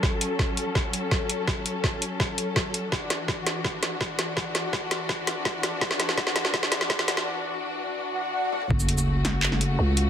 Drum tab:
HH |--x---x---x---x-|--x---x---x---x-|--x---x---x---x-|--x---x---x---x-|
SH |----------------|----------------|----------------|----------------|
CP |----------------|----------------|----------------|----------------|
SD |o---o---o---o---|o---o---o---o---|o-o-o-o-o-o-o-o-|o-o-o-o-o-o-o-o-|
T1 |----------------|----------------|----------------|----------------|
T2 |----------------|----------------|----------------|----------------|
BD |o---o---o---o---|o---o---o---o---|o---o---o---o---|o---o---o---o---|

HH |--x---x---x---x-|----------------|--x---x---x---x-|
SH |----------------|----------------|-x-x------------|
CP |----------------|----------------|--------x-------|
SD |oooooooooooooooo|----------------|------o--o------|
T1 |----------------|--------------o-|----------------|
T2 |----------------|---------------o|----------------|
BD |o---o---o---o---|----------------|o---------------|